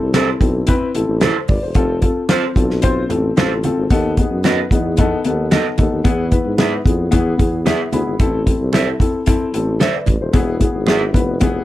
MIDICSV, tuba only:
0, 0, Header, 1, 2, 480
1, 0, Start_track
1, 0, Key_signature, 0, "minor"
1, 0, Tempo, 536673
1, 1571, Time_signature, 4, 2, 24, 8
1, 10413, End_track
2, 0, Start_track
2, 0, Title_t, "Tuba"
2, 0, Program_c, 0, 58
2, 7, Note_on_c, 0, 36, 80
2, 307, Note_off_c, 0, 36, 0
2, 363, Note_on_c, 0, 35, 85
2, 665, Note_off_c, 0, 35, 0
2, 853, Note_on_c, 0, 33, 85
2, 952, Note_off_c, 0, 33, 0
2, 971, Note_on_c, 0, 33, 91
2, 1171, Note_off_c, 0, 33, 0
2, 1333, Note_on_c, 0, 32, 91
2, 1432, Note_off_c, 0, 32, 0
2, 1452, Note_on_c, 0, 28, 80
2, 1552, Note_off_c, 0, 28, 0
2, 1569, Note_on_c, 0, 29, 85
2, 1869, Note_off_c, 0, 29, 0
2, 2289, Note_on_c, 0, 35, 97
2, 2774, Note_on_c, 0, 33, 90
2, 2787, Note_off_c, 0, 35, 0
2, 2973, Note_off_c, 0, 33, 0
2, 3013, Note_on_c, 0, 33, 85
2, 3312, Note_off_c, 0, 33, 0
2, 3372, Note_on_c, 0, 32, 81
2, 3472, Note_off_c, 0, 32, 0
2, 3493, Note_on_c, 0, 39, 86
2, 3792, Note_off_c, 0, 39, 0
2, 3849, Note_on_c, 0, 42, 82
2, 4150, Note_off_c, 0, 42, 0
2, 4214, Note_on_c, 0, 40, 90
2, 4612, Note_off_c, 0, 40, 0
2, 4693, Note_on_c, 0, 39, 79
2, 4992, Note_off_c, 0, 39, 0
2, 5179, Note_on_c, 0, 39, 88
2, 5277, Note_off_c, 0, 39, 0
2, 5293, Note_on_c, 0, 39, 82
2, 5393, Note_off_c, 0, 39, 0
2, 5412, Note_on_c, 0, 40, 100
2, 5712, Note_off_c, 0, 40, 0
2, 5769, Note_on_c, 0, 44, 76
2, 6070, Note_off_c, 0, 44, 0
2, 6131, Note_on_c, 0, 41, 86
2, 6331, Note_off_c, 0, 41, 0
2, 6378, Note_on_c, 0, 40, 83
2, 6575, Note_off_c, 0, 40, 0
2, 6615, Note_on_c, 0, 40, 82
2, 6913, Note_off_c, 0, 40, 0
2, 7092, Note_on_c, 0, 38, 97
2, 7192, Note_off_c, 0, 38, 0
2, 7211, Note_on_c, 0, 32, 76
2, 7311, Note_off_c, 0, 32, 0
2, 7332, Note_on_c, 0, 33, 83
2, 7631, Note_off_c, 0, 33, 0
2, 7692, Note_on_c, 0, 36, 84
2, 7990, Note_off_c, 0, 36, 0
2, 8531, Note_on_c, 0, 33, 89
2, 8829, Note_off_c, 0, 33, 0
2, 9015, Note_on_c, 0, 33, 92
2, 9112, Note_off_c, 0, 33, 0
2, 9127, Note_on_c, 0, 27, 83
2, 9228, Note_off_c, 0, 27, 0
2, 9250, Note_on_c, 0, 28, 93
2, 9548, Note_off_c, 0, 28, 0
2, 9611, Note_on_c, 0, 32, 88
2, 9967, Note_on_c, 0, 29, 88
2, 9980, Note_off_c, 0, 32, 0
2, 10365, Note_off_c, 0, 29, 0
2, 10413, End_track
0, 0, End_of_file